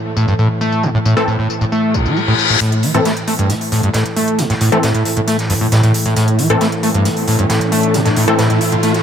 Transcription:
0.00 2.60 A2 medium
0.00 2.60 E3 medium
0.17 0.26 A2 loud
0.17 tambourine medium
0.28 0.34 G2 loud
0.28 tambourine soft
0.39 0.48 A2 loud
0.39 tambourine soft
0.61 0.85 A3 medium
0.61 tambourine medium
0.72 tambourine soft
0.83 0.89 A#2 medium
0.83 tambourine soft
0.95 0.98 A2 loud
1.05 1.15 A2 loud
1.05 tambourine medium
1.17 1.28 E3 medium
1.17 1.23 A3 medium
1.17 1.28 C4 medium
1.17 1.28 A4 medium
1.17 tambourine soft
1.28 1.37 A2 loud
1.28 tambourine soft
1.39 1.48 A2 medium
1.50 tambourine medium
1.61 1.65 A2 loud
1.61 tambourine soft
1.72 1.96 A3 medium
1.72 tambourine soft
1.72 reverse cymbal medium
1.94 2.07 A1 medium
1.94 tambourine medium
2.06 2.18 E3 medium
2.06 tambourine soft
2.17 2.20 A3 loud
2.17 tambourine soft
2.28 2.34 A2 loud
2.39 tambourine medium
2.50 2.56 A2 medium
2.50 tambourine soft
2.61 2.85 A2 loud
2.61 9.03 A2 medium
2.61 9.03 E3 medium
2.61 closed hi-hat medium
2.61 riser medium
2.72 closed hi-hat medium
2.83 2.93 E3 medium
2.83 closed hi-hat medium
2.83 open hi-hat loud
2.94 3.00 A2 medium
2.94 3.06 E3 medium
2.94 3.06 C4 medium
2.94 3.06 A4 medium
2.94 closed hi-hat medium
3.05 3.12 A3 loud
3.05 snare loud
3.05 closed hi-hat medium
3.17 closed hi-hat medium
3.27 3.34 A3 medium
3.27 closed hi-hat medium
3.27 open hi-hat loud
3.39 3.51 G2 loud
3.39 closed hi-hat medium
3.50 3.54 A2 loud
3.50 closed hi-hat medium
3.61 open hi-hat medium
3.72 3.81 A2 loud
3.72 closed hi-hat medium
3.72 open hi-hat loud
3.83 3.89 G2 loud
3.83 closed hi-hat medium
3.94 4.04 A2 loud
3.94 snare loud
3.94 closed hi-hat loud
3.94 closed hi-hat medium
4.06 closed hi-hat medium
4.16 4.40 A3 medium
4.16 closed hi-hat medium
4.16 open hi-hat loud
4.28 closed hi-hat medium
4.38 4.45 A#2 medium
4.38 closed hi-hat medium
4.50 4.54 A2 loud
4.50 snare soft
4.50 closed hi-hat medium
4.61 4.70 A2 loud
4.61 closed hi-hat medium
4.61 open hi-hat loud
4.72 4.84 E3 medium
4.72 4.78 A3 medium
4.72 4.84 C4 medium
4.72 4.84 A4 medium
4.72 closed hi-hat medium
4.83 4.92 A2 loud
4.83 snare loud
4.83 closed hi-hat medium
4.94 5.03 A2 medium
4.94 closed hi-hat medium
5.05 closed hi-hat medium
5.05 open hi-hat loud
5.17 5.20 A2 loud
5.17 closed hi-hat medium
5.28 5.37 A3 medium
5.28 closed hi-hat medium
5.39 snare soft
5.39 closed hi-hat medium
5.50 5.54 G2 loud
5.50 closed hi-hat medium
5.50 open hi-hat loud
5.61 5.67 A2 medium
5.61 open hi-hat medium
5.72 5.81 A2 loud
5.72 snare loud
5.72 closed hi-hat loud
5.72 closed hi-hat medium
5.83 5.92 A2 medium
5.83 closed hi-hat medium
5.83 closed hi-hat soft
5.94 closed hi-hat medium
5.94 open hi-hat loud
6.06 6.15 A2 medium
6.06 closed hi-hat medium
6.06 closed hi-hat soft
6.16 6.40 A2 loud
6.16 closed hi-hat medium
6.28 closed hi-hat medium
6.39 6.48 E3 medium
6.39 closed hi-hat medium
6.39 open hi-hat loud
6.50 6.56 A2 medium
6.50 6.62 E3 medium
6.50 6.62 C4 medium
6.50 6.62 A4 medium
6.50 closed hi-hat medium
6.61 6.67 A3 loud
6.61 snare loud
6.61 closed hi-hat medium
6.72 closed hi-hat medium
6.83 6.89 A3 medium
6.83 closed hi-hat medium
6.83 open hi-hat loud
6.94 7.07 G2 loud
6.94 closed hi-hat medium
7.05 7.09 A2 loud
7.05 closed hi-hat loud
7.05 closed hi-hat medium
7.17 open hi-hat medium
7.28 7.37 A2 loud
7.28 closed hi-hat medium
7.28 open hi-hat loud
7.39 7.45 G2 loud
7.39 closed hi-hat medium
7.50 7.59 A2 loud
7.50 snare loud
7.50 closed hi-hat medium
7.61 closed hi-hat medium
7.72 7.96 A3 medium
7.72 closed hi-hat medium
7.72 open hi-hat loud
7.83 closed hi-hat medium
7.94 8.00 A#2 medium
7.94 closed hi-hat medium
8.06 8.09 A2 loud
8.06 snare soft
8.06 closed hi-hat medium
8.16 8.26 A2 loud
8.16 closed hi-hat medium
8.16 open hi-hat loud
8.28 8.39 E3 medium
8.28 8.34 A3 medium
8.28 8.39 C4 medium
8.28 8.39 A4 medium
8.28 closed hi-hat medium
8.39 8.48 A2 loud
8.39 snare loud
8.39 closed hi-hat medium
8.50 8.59 A2 medium
8.50 closed hi-hat medium
8.61 closed hi-hat medium
8.61 open hi-hat loud
8.72 8.76 A2 loud
8.72 closed hi-hat medium
8.83 8.92 A3 medium
8.83 closed hi-hat medium
8.94 snare soft
8.94 closed hi-hat soft

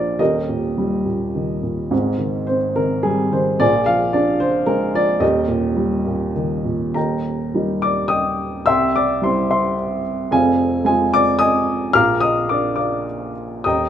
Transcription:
0.00 0.16 A#1 medium
0.00 0.17 A#2 medium
0.00 0.22 F3 soft
0.00 0.18 D4 soft
0.00 0.21 F4 medium
0.00 0.21 A#4 medium
0.00 0.21 C5 medium
0.00 0.21 D5 medium
0.19 1.88 D#1 medium
0.19 1.88 D#2 medium
0.19 2.45 G4 medium
0.19 2.45 A#4 medium
0.19 2.55 D#5 medium
0.49 1.04 A#2 medium
0.78 1.89 G3 medium
1.06 1.61 A#2 soft
1.35 1.90 D#3 medium
1.63 1.91 A#2 soft
1.91 3.56 G#1 medium
1.91 3.56 G#2 medium
2.18 2.76 D#3 medium
2.47 3.57 C4 medium
2.47 2.77 C5 medium
2.76 3.31 D#3 soft
2.76 3.06 A#4 medium
3.03 3.59 G3 medium
3.03 3.33 G#4 medium
3.32 3.59 D#3 medium
3.32 3.58 C5 medium
3.60 5.17 A#1 medium
3.60 5.18 A#2 medium
3.60 4.37 F4 medium
3.60 4.37 G#4 medium
3.60 3.88 D5 loud
3.86 4.39 F3 medium
3.86 4.14 F5 loud
4.13 5.18 D4 medium
4.13 4.41 D5 medium
4.40 4.93 F3 medium
4.40 4.65 C5 medium
4.66 5.20 G#3 medium
4.66 4.95 A#4 medium
4.94 5.21 F3 medium
4.94 5.23 D5 medium
5.20 6.91 D#1 medium
5.20 6.91 D#2 medium
5.20 6.32 G4 medium
5.20 6.32 A#4 medium
5.20 6.32 D#5 medium
5.48 6.05 A#2 medium
5.77 6.92 G3 medium
6.06 6.64 A#2 medium
6.36 6.94 D#3 medium
6.65 6.95 A#2 medium
6.94 8.63 D#1 medium
6.94 8.63 D#2 medium
6.94 7.79 A#4 medium
6.94 7.79 D#5 soft
6.94 7.79 G5 soft
6.94 7.85 A#5 medium
7.54 8.09 G3 soft
7.54 8.09 A#3 soft
7.54 8.10 D#4 soft
7.82 8.09 D5 medium
7.82 8.11 D6 medium
8.08 8.63 D#5 medium
8.08 8.63 G5 medium
8.08 8.68 D#6 medium
8.66 10.27 C2 medium
8.66 8.94 E5 medium
8.66 8.94 G5 medium
8.66 8.93 C6 medium
8.66 8.96 E6 loud
8.96 9.22 D5 medium
8.96 9.24 D6 medium
9.22 9.75 G3 medium
9.22 9.75 C4 soft
9.22 9.75 E4 medium
9.22 9.49 C5 medium
9.22 9.49 C6 medium
9.51 10.01 C5 medium
9.51 10.01 E5 medium
9.51 10.01 C6 medium
10.31 11.90 F1 medium
10.31 11.90 F2 medium
10.31 10.82 G#4 medium
10.31 10.83 C5 medium
10.31 10.82 F5 medium
10.31 10.85 G#5 medium
10.85 11.37 G#3 medium
10.85 11.38 C4 medium
10.85 11.38 F4 medium
10.85 11.11 G#4 medium
10.85 11.14 G#5 medium
11.14 11.39 D5 medium
11.14 11.41 D6 loud
11.39 11.91 D#5 medium
11.39 11.91 G#5 medium
11.39 11.96 D#6 loud
11.93 13.61 A#1 medium
11.93 13.61 A#2 medium
11.93 12.21 F5 medium
11.93 12.21 A#5 medium
11.93 12.21 D6 medium
11.93 12.23 F6 loud
12.20 12.48 D#5 medium
12.20 12.47 D#6 loud
12.49 13.05 A#3 soft
12.49 13.05 D4 soft
12.49 13.05 F4 soft
12.49 12.77 D5 medium
12.49 12.74 D6 medium
12.76 13.32 D5 medium
12.76 13.32 F5 medium
12.76 13.31 D6 medium
13.64 13.89 D#1 medium
13.64 13.89 D#2 medium
13.64 13.89 D#5 medium
13.64 13.89 G5 medium
13.64 13.89 A#5 medium
13.64 13.89 D#6 medium

